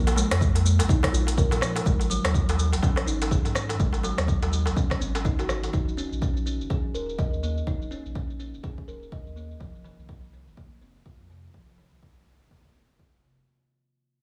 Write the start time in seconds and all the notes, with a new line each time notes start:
Already playing: A#1
0.07 closed hi-hat, darbuka tek, shaker
0.16 G#3, darbuka ka, shaker
0.31 F2, cross-stick, closed hi-hat, darbuka tek, shaker
0.40 G#3, kick, shaker
0.55 closed hi-hat, darbuka tek, shaker
0.65 G#3, shaker
0.79 A#1, closed hi-hat, darbuka tek, shaker
0.89 D#4, kick, shaker
1.03 kick, cross-stick, closed hi-hat, darbuka tek
1.13 A#1 F4, shaker
1.27 closed hi-hat, darbuka tek, shaker
1.37 A#4, kick, shaker
1.51 A#2, closed hi-hat, darbuka tek, shaker
1.61 F3, cross-stick, darbuka ka, shaker
1.76 closed hi-hat, darbuka tek, shaker
1.86 G#1 G#3, kick, shaker
2.00 closed hi-hat, darbuka tek, shaker
2.10 F#3, shaker
2.24 D#2, cross-stick, closed hi-hat, darbuka tek, shaker
2.34 F#3, kick, shaker
2.49 closed hi-hat, darbuka tek, shaker
2.58 F#3, shaker
2.73 G#1, closed hi-hat, darbuka tek, shaker
2.83 C#4, kick, darbuka ka, shaker
2.96 cross-stick, closed hi-hat, darbuka tek
3.07 G#1 D#4, shaker
3.22 closed hi-hat, darbuka tek, shaker
3.31 G#4, kick, shaker
3.45 G#2, closed hi-hat, darbuka tek, shaker
3.55 D#3, cross-stick, darbuka ka, shaker
3.69 closed hi-hat, darbuka tek, shaker
3.80 G#1 G#3, kick, shaker
3.93 closed hi-hat, darbuka tek, shaker
4.03 F#3, darbuka ka, shaker
4.18 D#2, cross-stick, closed hi-hat, darbuka tek, shaker
4.27 F#3, kick, shaker
4.42 closed hi-hat, darbuka tek, shaker
4.52 F#3, shaker
4.66 G#1, closed hi-hat, darbuka tek, shaker
4.76 C#4, kick, shaker
4.90 kick, cross-stick, closed hi-hat, darbuka tek
5.00 G#1 C4, shaker
5.15 closed hi-hat, darbuka tek, shaker
5.25 D#4, kick, shaker
5.39 G#1 F#4, closed hi-hat, darbuka tek, shaker
5.49 D#3, cross-stick, darbuka ka, shaker
5.63 closed hi-hat, darbuka tek, shaker
5.73 D#1 D#4, kick, shaker
5.89 shaker
5.97 C#4, shaker
6.12 A#1, shaker
6.21 C#4, kick, shaker
6.37 shaker
6.46 C#4, shaker
6.60 D#1, shaker
6.70 G#4, kick, shaker
6.94 D#1 A#4, shaker
7.09 shaker
7.18 D#5, kick, shaker
7.33 D#2, shaker
7.43 A#3, shaker
7.58 shaker
7.67 D#1 D#4, kick, shaker
7.82 shaker
7.91 C#4, shaker
8.06 A#1, shaker
8.15 C#4, kick, shaker
8.30 shaker
8.40 C#4, shaker
8.54 D#1, shaker
8.63 G#4, kick, shaker
8.78 kick
8.88 D#1 A#4, shaker
9.03 shaker
9.12 D#5, kick, shaker
9.26 D#2, shaker
9.36 A#3, shaker
9.51 shaker
9.60 F1 F3, kick, shaker
9.75 shaker
9.84 D#3, shaker
9.99 C2, shaker
10.09 D#3, kick, shaker
10.24 shaker
10.33 D#3, shaker
10.47 F1, shaker
10.57 A#3, kick, shaker
10.81 F1 C4, shaker
10.97 shaker
11.06 F4, kick, shaker
11.20 F2, shaker
11.30 C3, shaker
11.45 shaker
11.54 F1 F3, kick, shaker
11.69 shaker
11.78 D#3, shaker
11.92 C2, shaker
12.02 D#3, kick, shaker
12.18 shaker
12.27 D#3, shaker
12.41 F1, shaker
12.51 A#3, kick, shaker
12.65 kick, shaker
12.75 F1 C4, shaker
12.90 shaker
12.99 F4, kick, shaker
13.14 F1, shaker
13.23 C3, shaker
13.38 shaker